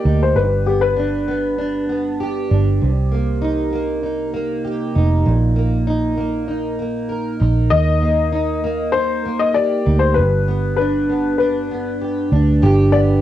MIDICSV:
0, 0, Header, 1, 4, 480
1, 0, Start_track
1, 0, Tempo, 613497
1, 276, Time_signature, 4, 2, 24, 8
1, 10339, End_track
2, 0, Start_track
2, 0, Title_t, "Upright piano"
2, 0, Program_c, 0, 0
2, 0, Note_on_c, 0, 74, 89
2, 177, Note_off_c, 0, 74, 0
2, 177, Note_on_c, 0, 72, 69
2, 279, Note_on_c, 0, 71, 73
2, 290, Note_off_c, 0, 72, 0
2, 520, Note_on_c, 0, 67, 62
2, 525, Note_off_c, 0, 71, 0
2, 635, Note_on_c, 0, 71, 86
2, 641, Note_off_c, 0, 67, 0
2, 1564, Note_off_c, 0, 71, 0
2, 6027, Note_on_c, 0, 75, 91
2, 6980, Note_on_c, 0, 72, 92
2, 7022, Note_off_c, 0, 75, 0
2, 7350, Note_on_c, 0, 75, 80
2, 7360, Note_off_c, 0, 72, 0
2, 7465, Note_off_c, 0, 75, 0
2, 7468, Note_on_c, 0, 74, 89
2, 7819, Note_on_c, 0, 72, 82
2, 7844, Note_off_c, 0, 74, 0
2, 7936, Note_on_c, 0, 71, 75
2, 7952, Note_off_c, 0, 72, 0
2, 8396, Note_off_c, 0, 71, 0
2, 8423, Note_on_c, 0, 71, 78
2, 8893, Note_off_c, 0, 71, 0
2, 8905, Note_on_c, 0, 71, 68
2, 9600, Note_off_c, 0, 71, 0
2, 10110, Note_on_c, 0, 74, 82
2, 10165, Note_off_c, 0, 74, 0
2, 10339, End_track
3, 0, Start_track
3, 0, Title_t, "Steel-string acoustic guitar"
3, 0, Program_c, 1, 25
3, 0, Note_on_c, 1, 58, 51
3, 0, Note_on_c, 1, 67, 53
3, 44, Note_on_c, 1, 63, 57
3, 283, Note_on_c, 1, 43, 75
3, 326, Note_off_c, 1, 58, 0
3, 328, Note_off_c, 1, 63, 0
3, 520, Note_on_c, 1, 59, 49
3, 756, Note_on_c, 1, 62, 58
3, 993, Note_off_c, 1, 59, 0
3, 1003, Note_on_c, 1, 59, 53
3, 1231, Note_off_c, 1, 62, 0
3, 1241, Note_on_c, 1, 62, 52
3, 1472, Note_off_c, 1, 59, 0
3, 1481, Note_on_c, 1, 59, 48
3, 1721, Note_off_c, 1, 67, 0
3, 1724, Note_on_c, 1, 67, 56
3, 1954, Note_off_c, 1, 62, 0
3, 1964, Note_on_c, 1, 62, 51
3, 2200, Note_off_c, 1, 43, 0
3, 2201, Note_on_c, 1, 48, 72
3, 2247, Note_off_c, 1, 59, 0
3, 2248, Note_off_c, 1, 62, 0
3, 2438, Note_on_c, 1, 58, 50
3, 2673, Note_on_c, 1, 63, 55
3, 2912, Note_off_c, 1, 58, 0
3, 2915, Note_on_c, 1, 58, 56
3, 3151, Note_off_c, 1, 63, 0
3, 3154, Note_on_c, 1, 63, 54
3, 3390, Note_off_c, 1, 58, 0
3, 3393, Note_on_c, 1, 58, 54
3, 3631, Note_off_c, 1, 67, 0
3, 3634, Note_on_c, 1, 67, 55
3, 3871, Note_off_c, 1, 63, 0
3, 3874, Note_on_c, 1, 63, 51
3, 4112, Note_on_c, 1, 46, 67
3, 4119, Note_off_c, 1, 48, 0
3, 4163, Note_off_c, 1, 67, 0
3, 4346, Note_off_c, 1, 58, 0
3, 4349, Note_on_c, 1, 58, 51
3, 4590, Note_off_c, 1, 63, 0
3, 4593, Note_on_c, 1, 63, 59
3, 4828, Note_off_c, 1, 58, 0
3, 4831, Note_on_c, 1, 58, 49
3, 5066, Note_off_c, 1, 63, 0
3, 5069, Note_on_c, 1, 63, 56
3, 5309, Note_off_c, 1, 58, 0
3, 5312, Note_on_c, 1, 58, 52
3, 5548, Note_on_c, 1, 70, 57
3, 5786, Note_off_c, 1, 63, 0
3, 5789, Note_on_c, 1, 63, 56
3, 6035, Note_off_c, 1, 46, 0
3, 6270, Note_off_c, 1, 58, 0
3, 6273, Note_on_c, 1, 58, 55
3, 6509, Note_off_c, 1, 63, 0
3, 6513, Note_on_c, 1, 63, 55
3, 6749, Note_off_c, 1, 58, 0
3, 6759, Note_on_c, 1, 58, 55
3, 6991, Note_off_c, 1, 63, 0
3, 7001, Note_on_c, 1, 63, 54
3, 7232, Note_off_c, 1, 58, 0
3, 7241, Note_on_c, 1, 58, 51
3, 7474, Note_off_c, 1, 70, 0
3, 7477, Note_on_c, 1, 67, 54
3, 7707, Note_off_c, 1, 63, 0
3, 7716, Note_on_c, 1, 63, 48
3, 7950, Note_on_c, 1, 43, 69
3, 8005, Note_off_c, 1, 63, 0
3, 8008, Note_off_c, 1, 58, 0
3, 8202, Note_on_c, 1, 59, 52
3, 8441, Note_on_c, 1, 62, 61
3, 8679, Note_off_c, 1, 59, 0
3, 8682, Note_on_c, 1, 59, 47
3, 8918, Note_off_c, 1, 62, 0
3, 8921, Note_on_c, 1, 62, 52
3, 9160, Note_off_c, 1, 59, 0
3, 9163, Note_on_c, 1, 59, 52
3, 9396, Note_off_c, 1, 67, 0
3, 9400, Note_on_c, 1, 67, 54
3, 9639, Note_off_c, 1, 62, 0
3, 9642, Note_on_c, 1, 62, 53
3, 9865, Note_off_c, 1, 43, 0
3, 9875, Note_on_c, 1, 43, 83
3, 9878, Note_off_c, 1, 67, 0
3, 9881, Note_on_c, 1, 67, 71
3, 10109, Note_off_c, 1, 59, 0
3, 10112, Note_on_c, 1, 59, 61
3, 10339, Note_off_c, 1, 43, 0
3, 10339, Note_off_c, 1, 59, 0
3, 10339, Note_off_c, 1, 62, 0
3, 10339, Note_off_c, 1, 67, 0
3, 10339, End_track
4, 0, Start_track
4, 0, Title_t, "Fingered electric bass"
4, 0, Program_c, 2, 33
4, 40, Note_on_c, 2, 38, 74
4, 259, Note_off_c, 2, 38, 0
4, 280, Note_on_c, 2, 31, 99
4, 1927, Note_off_c, 2, 31, 0
4, 1963, Note_on_c, 2, 31, 71
4, 2181, Note_off_c, 2, 31, 0
4, 2207, Note_on_c, 2, 36, 86
4, 3851, Note_off_c, 2, 36, 0
4, 3880, Note_on_c, 2, 29, 81
4, 4099, Note_off_c, 2, 29, 0
4, 4118, Note_on_c, 2, 34, 90
4, 5767, Note_off_c, 2, 34, 0
4, 5799, Note_on_c, 2, 34, 80
4, 6019, Note_off_c, 2, 34, 0
4, 6041, Note_on_c, 2, 39, 83
4, 7688, Note_off_c, 2, 39, 0
4, 7720, Note_on_c, 2, 38, 80
4, 7959, Note_on_c, 2, 31, 82
4, 7971, Note_off_c, 2, 38, 0
4, 9607, Note_off_c, 2, 31, 0
4, 9637, Note_on_c, 2, 38, 71
4, 9858, Note_off_c, 2, 38, 0
4, 9881, Note_on_c, 2, 31, 121
4, 10339, Note_off_c, 2, 31, 0
4, 10339, End_track
0, 0, End_of_file